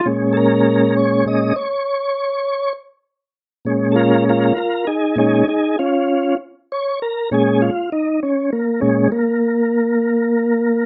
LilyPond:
<<
  \new Staff \with { instrumentName = "Tonewheel organ" } { \time 12/8 \key bes \minor \tempo 4. = 66 r8 <a' bes'>4 des''8 ees''8 des''2 r4. | r8 <f' a' bes'>8 <f' bes'>8 <f' bes'>8 <ees' aes'>8 <ees' aes'>8 <ees' aes'>8 <des' f'>4 r8 des''8 bes'8 | aes'8 f'8 ees'8 des'8 bes8 r8 bes2. | }
  \new Staff \with { instrumentName = "Tonewheel organ" } { \clef bass \time 12/8 \key bes \minor <bes, aes des'>2 <bes, aes des'>8 r2. r8 | <bes, aes des'>4. r4 <bes, aes des'>8 r2. | <bes, aes des'>8 r2 <bes, aes des'>8 r2. | }
>>